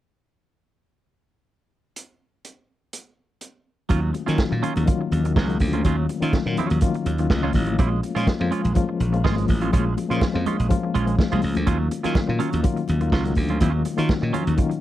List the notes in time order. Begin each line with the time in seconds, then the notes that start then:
1.96 closed hi-hat
2.45 closed hi-hat
2.93 closed hi-hat
3.41 closed hi-hat
3.89 D#2 D#3 F#3 A#3 C#4 F4, kick, closed hi-hat, muted conga
4.03 muted clean electric guitar stroke
4.13 muted clean electric guitar stroke, closed hi-hat, muted conga
4.26 D#3 F#3 A#3 C#4 F4, snare, closed hi-hat
4.38 kick, snare, high conga
4.51 A#2 D#3 F#3 A#3 C#4 F4, muted clean electric guitar stroke
4.62 F#3 C#4 F4, closed hi-hat
4.76 D#2, muted clean electric guitar stroke, closed hi-hat, low conga
4.86 D#3 F#3 A#3 C#4 F4, muted clean electric guitar stroke, kick, closed hi-hat, muted conga
5.01 muted clean electric guitar stroke
5.12 D#2, closed hi-hat, muted conga, low conga
5.23 D#3 F#3 A#3 C#4 F#4, muted clean electric guitar stroke, closed hi-hat
5.36 C#2 F#3 C#4 F4, kick, snare, high conga
5.48 D#3 F#3 A#3 C#4 F4, muted clean electric guitar stroke, closed hi-hat
5.60 D2, muted clean electric guitar stroke, kick, open hi-hat
5.73 F#3 C#4 F4, closed hi-hat, high conga
5.84 D#2 D#3 F#3 A#3 C#4 F4, kick, closed hi-hat, muted conga
5.98 muted clean electric guitar stroke
6.09 muted clean electric guitar stroke, closed hi-hat, muted conga
6.21 D#3 F#3 A#3 C#4 F4, closed hi-hat
6.33 kick, snare, high conga
6.46 A#2 D#3 F#3 A#3 C#4 F4, muted clean electric guitar stroke
6.57 F#3 C#4 F4, closed hi-hat, low conga
6.70 D#2, muted clean electric guitar stroke, closed hi-hat
6.81 D#3 F#3 A#3 C#4 F4, muted clean electric guitar stroke, kick, closed hi-hat, muted conga
6.94 muted clean electric guitar stroke, closed hi-hat
7.06 D#2 C#5, closed hi-hat
7.18 D#3 F#3 A#3 C#4 F4, muted clean electric guitar stroke, closed hi-hat
7.30 C#2, muted clean electric guitar stroke, kick, snare, high conga
7.43 D#3 F#3 A#3 C#4 F4
7.53 A1 F5, kick, open hi-hat
7.66 muted clean electric guitar stroke, closed hi-hat, high conga
7.78 A#1 F3 G#3 A#3 C#4 F4, kick, closed hi-hat, muted conga
7.92 muted clean electric guitar stroke
8.03 muted clean electric guitar stroke, closed hi-hat, muted conga
8.15 A#2 F3 G#3 A#3 C#4 F4, snare, closed hi-hat
8.27 kick, snare, high conga
8.40 F2 F3 G#3 A#3 C#4 F4, muted clean electric guitar stroke
8.51 G#3 C#4 F4, closed hi-hat
8.64 A#1, muted clean electric guitar stroke, closed hi-hat, low conga
8.75 F3 G#3 A#3 C#4 F4, muted clean electric guitar stroke, kick, closed hi-hat, muted conga
8.89 muted clean electric guitar stroke
9.00 A#1, closed hi-hat, low conga
9.12 F3 G#3 A#3 C#4 F4, muted clean electric guitar stroke, closed hi-hat
9.24 G#1 G#3 C#4 F4, kick, snare, high conga
9.36 F3 G#3 A#3 C#4 F4, muted clean electric guitar stroke, closed hi-hat
9.48 A1, muted clean electric guitar stroke, kick, open hi-hat
9.61 G#3 C#4 F4, closed hi-hat, high conga
9.72 A#1 F3 G#3 A#3 C#4 F4, kick, closed hi-hat, muted conga
9.87 muted clean electric guitar stroke
9.97 muted clean electric guitar stroke, closed hi-hat, muted conga
10.09 A#2 F3 G#3 A#3 C#4 F4, closed hi-hat
10.21 kick, snare, high conga
10.33 F2 F3 G#3 A#3 C#4 F4, muted clean electric guitar stroke
10.46 G#3 C#4 F4, closed hi-hat, low conga
10.59 A#1, muted clean electric guitar stroke, closed hi-hat
10.69 F3 G#3 A#3 C#4 F4, kick, closed hi-hat, muted conga
10.83 muted clean electric guitar stroke
10.94 A#1 G#3 C#4 F4, closed hi-hat
11.06 F3 G#3 A#3 C#4 F4, muted clean electric guitar stroke, closed hi-hat
11.19 muted clean electric guitar stroke, kick, snare, high conga
11.31 C2 F3 G#3 A#3 C#4 F4, closed hi-hat
11.42 C#2, muted clean electric guitar stroke, open hi-hat
11.55 D2, muted clean electric guitar stroke, closed hi-hat, high conga
11.66 D#2 D#3 F#3 A#3 C#4 F4, kick, closed hi-hat, muted conga
11.80 muted clean electric guitar stroke
11.91 muted clean electric guitar stroke, closed hi-hat, muted conga
12.03 D#3 F#3 A#3 C#4 F4, snare, closed hi-hat
12.15 kick, snare, high conga
12.28 A#2 D#3 F#3 A#3 C#4 F4, muted clean electric guitar stroke
12.39 F#3 C#4 F4, closed hi-hat
12.52 D#2, muted clean electric guitar stroke, closed hi-hat, low conga
12.63 D#3 F#3 A#3 C#4 F4, muted clean electric guitar stroke, kick, closed hi-hat, muted conga
12.77 muted clean electric guitar stroke, closed hi-hat
12.88 D#2, closed hi-hat, muted conga, low conga
13.01 D#3 F#3 A#3 C#4 F4, muted clean electric guitar stroke, closed hi-hat
13.12 C#2 F#3 C#4 F4, kick, snare, high conga
13.25 D#3 F#3 A#3 C#4 F4, muted clean electric guitar stroke, closed hi-hat
13.35 D2, muted clean electric guitar stroke, kick, open hi-hat
13.49 F#3 C#4 F4, closed hi-hat, high conga
13.60 D#2 D#3 F#3 A#3 C#4 F4, kick, closed hi-hat, muted conga
13.74 muted clean electric guitar stroke
13.85 muted clean electric guitar stroke, closed hi-hat, muted conga
13.97 D#3 F#3 A#3 C#4 F4 F#4, closed hi-hat
14.09 kick, snare, high conga
14.21 A#2 D#3 F#3 A#3 C#4 D#4, muted clean electric guitar stroke
14.33 F#3 C#4 F4, closed hi-hat, low conga
14.46 D#2, muted clean electric guitar stroke, closed hi-hat
14.57 D#3 F#3 A#3 C#4 F4, muted clean electric guitar stroke, kick, closed hi-hat, muted conga
14.70 muted clean electric guitar stroke, closed hi-hat